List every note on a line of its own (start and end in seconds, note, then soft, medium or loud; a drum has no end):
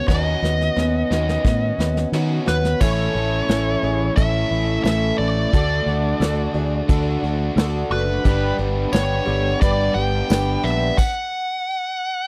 0.06 0.34 D#2 medium
0.06 0.41 D#3 medium
0.06 0.42 B3 medium
0.06 0.42 C#4 medium
0.06 0.41 D#4 medium
0.06 0.41 F#4 medium
0.06 2.09 D#5 medium
0.06 kick medium
0.06 snare soft
0.42 0.68 D#2 medium
0.42 0.73 D#3 medium
0.42 0.75 B3 soft
0.42 0.75 C#4 soft
0.42 0.76 F#4 soft
0.42 snare medium
0.61 snare soft
0.76 1.02 D#2 medium
0.76 1.10 D#3 medium
0.76 1.11 B3 medium
0.76 1.10 C#4 medium
0.76 1.10 F#4 medium
0.76 snare medium
1.11 1.37 D#2 medium
1.11 1.43 D#3 medium
1.11 1.45 B3 soft
1.11 1.45 C#4 soft
1.11 1.43 D#4 medium
1.11 1.45 F#4 soft
1.11 snare medium
1.29 snare medium
1.44 1.71 A2 medium
1.44 1.79 D#3 medium
1.44 1.79 B3 medium
1.44 1.79 C#4 medium
1.44 1.78 F#4 medium
1.44 kick loud
1.44 snare medium
1.78 2.04 D#2 medium
1.78 2.10 D#3 medium
1.78 2.13 B3 soft
1.78 2.13 C#4 soft
1.78 2.13 F#4 soft
1.78 snare medium
1.97 snare medium
2.12 2.38 D#3 medium
2.12 2.47 D#3 medium
2.12 2.48 B3 medium
2.12 2.47 C#4 medium
2.12 2.46 D#4 medium
2.12 2.45 F#4 medium
2.12 snare medium
2.46 2.73 D#2 medium
2.46 2.78 D#3 medium
2.46 2.81 B3 soft
2.46 2.81 C#4 soft
2.46 2.81 F#4 medium
2.46 2.83 B4 medium
2.46 snare medium
2.65 snare medium
2.80 3.07 A1 medium
2.80 3.15 A2 medium
2.80 3.15 E3 medium
2.80 3.15 A3 medium
2.80 3.24 C#4 medium
2.80 3.15 C#4 medium
2.80 3.24 E4 medium
2.80 3.14 E4 medium
2.80 8.22 A4 medium
2.80 3.25 A4 medium
2.80 4.18 A4 medium
2.80 4.16 C#5 medium
2.80 5.51 E5 medium
2.80 5.51 C#6 medium
2.80 kick medium
2.80 crash medium
3.15 3.41 A1 medium
3.15 3.48 A3 soft
3.15 3.49 C#4 soft
3.15 3.49 E4 soft
3.48 3.75 A1 medium
3.48 3.83 E3 medium
3.48 3.84 A3 soft
3.48 3.70 C#4 medium
3.48 3.83 C#4 medium
3.48 3.70 E4 medium
3.48 3.82 E4 medium
3.48 3.71 A4 medium
3.48 snare medium
3.48 closed hi-hat medium
3.82 4.09 A1 medium
3.82 4.17 A3 soft
3.82 4.04 C#4 medium
3.82 4.17 C#4 soft
3.82 4.05 E4 medium
3.82 4.17 E4 medium
3.82 4.05 G#4 medium
4.16 4.43 A1 medium
4.16 4.52 A2 medium
4.16 4.52 E3 medium
4.16 4.52 A3 medium
4.16 4.60 C#4 medium
4.16 4.51 C#4 medium
4.16 4.61 E4 medium
4.16 4.50 E4 medium
4.16 4.61 A4 medium
4.16 5.52 A4 medium
4.16 4.82 E5 loud
4.16 kick loud
4.16 closed hi-hat medium
4.51 4.77 A1 medium
4.51 4.85 A3 soft
4.51 4.86 C#4 soft
4.51 4.86 E4 medium
4.84 5.11 A1 medium
4.84 5.20 E3 medium
4.84 5.20 A3 medium
4.84 5.28 C#4 medium
4.84 5.20 C#4 medium
4.84 5.28 E4 medium
4.84 5.29 A4 medium
4.84 5.18 E5 loud
4.84 snare loud
4.84 closed hi-hat medium
4.88 5.19 E4 medium
5.18 5.45 A1 medium
5.18 5.54 E4 medium
5.18 7.99 D5 medium
5.23 5.53 A3 soft
5.53 5.79 D2 medium
5.53 5.88 D3 medium
5.53 5.88 A3 medium
5.53 5.97 D4 medium
5.53 5.87 D4 medium
5.53 5.97 F#4 medium
5.53 5.86 F#4 medium
5.53 5.97 A4 medium
5.53 6.88 A4 loud
5.53 8.23 F#5 medium
5.53 10.94 A5 medium
5.53 kick medium
5.53 closed hi-hat medium
5.86 6.13 D2 medium
5.86 6.20 A3 soft
5.86 6.21 D4 medium
5.86 6.21 F#4 medium
6.20 6.47 D2 medium
6.20 6.55 D3 medium
6.20 6.54 A3 medium
6.20 6.43 D4 medium
6.20 6.54 D4 medium
6.20 6.43 F#4 medium
6.20 6.53 F#4 medium
6.20 6.43 A4 loud
6.20 snare loud
6.20 closed hi-hat medium
6.54 6.81 D2 medium
6.54 6.88 A3 soft
6.54 6.77 D4 medium
6.54 6.89 D4 soft
6.54 6.89 F#4 medium
6.54 6.77 F#4 medium
6.54 6.77 G#4 medium
6.88 7.15 D2 medium
6.88 7.24 D3 medium
6.88 7.24 A3 medium
6.88 7.32 D4 medium
6.88 7.24 D4 medium
6.88 7.32 F#4 medium
6.88 7.23 F#4 medium
6.88 7.33 A4 medium
6.88 8.24 A4 medium
6.88 kick loud
6.88 closed hi-hat medium
7.23 7.49 D2 medium
7.23 7.57 A3 soft
7.23 7.58 D4 soft
7.23 7.58 F#4 medium
7.55 7.83 D2 medium
7.55 7.92 D3 medium
7.55 7.92 A3 medium
7.55 8.00 D4 medium
7.55 8.00 F#4 medium
7.55 8.00 A4 medium
7.55 snare loud
7.55 closed hi-hat medium
7.59 7.91 D4 medium
7.59 7.91 F#4 medium
7.90 8.17 F#1 medium
7.90 8.25 A3 soft
7.90 8.24 D4 soft
7.90 8.25 F#4 medium
7.90 8.56 B4 medium
8.24 8.51 G1 medium
8.24 8.59 G2 medium
8.24 8.59 D3 medium
8.24 8.59 G3 medium
8.24 8.58 B3 medium
8.24 8.68 D4 medium
8.24 8.57 D4 medium
8.24 8.69 G4 medium
8.24 8.56 G4 loud
8.24 10.95 B4 medium
8.24 8.69 B4 medium
8.24 9.61 B4 medium
8.24 10.95 G5 medium
8.24 kick medium
8.24 closed hi-hat medium
8.58 8.85 G1 medium
8.58 8.91 G3 soft
8.58 8.91 B3 soft
8.58 8.92 D4 medium
8.58 8.93 G4 medium
8.92 9.19 G1 medium
8.92 9.27 G3 medium
8.92 9.26 B3 medium
8.92 9.15 D4 medium
8.92 9.25 D4 medium
8.92 9.15 G4 medium
8.92 9.24 G4 medium
8.92 9.16 B4 medium
8.92 9.61 C#5 medium
8.92 snare loud
8.92 closed hi-hat medium
8.92 tambourine loud
9.26 9.53 G1 medium
9.26 9.60 G3 soft
9.26 9.61 B3 soft
9.26 9.49 D4 medium
9.26 9.61 D4 medium
9.26 9.61 G4 soft
9.26 9.49 G4 medium
9.26 9.49 A4 medium
9.60 9.88 G1 medium
9.60 9.95 G2 medium
9.60 9.96 D3 medium
9.60 9.96 G3 medium
9.60 9.96 B3 medium
9.60 10.04 D4 medium
9.60 9.96 D4 medium
9.60 10.04 G4 medium
9.60 9.95 G4 medium
9.60 10.05 B4 medium
9.60 10.97 B4 medium
9.60 9.97 D5 loud
9.60 kick loud
9.60 closed hi-hat medium
9.94 10.22 G1 medium
9.94 10.29 G3 soft
9.94 10.29 B3 soft
9.94 10.30 D4 soft
9.94 10.30 G4 soft
9.94 10.65 G5 loud
10.28 10.56 G1 loud
10.28 10.64 G3 medium
10.28 10.64 B3 medium
10.28 10.72 D4 medium
10.28 10.63 D4 medium
10.28 10.73 G4 medium
10.28 10.62 G4 medium
10.28 10.73 B4 medium
10.28 snare loud
10.28 closed hi-hat medium
10.28 tambourine loud
10.64 10.90 A#1 medium
10.64 10.99 G3 soft
10.64 10.98 B3 soft
10.64 10.98 D4 medium
10.64 10.98 G4 medium
10.64 10.99 E5 medium
10.64 snare soft
10.97 12.27 F#5 loud
10.97 kick medium
10.97 crash medium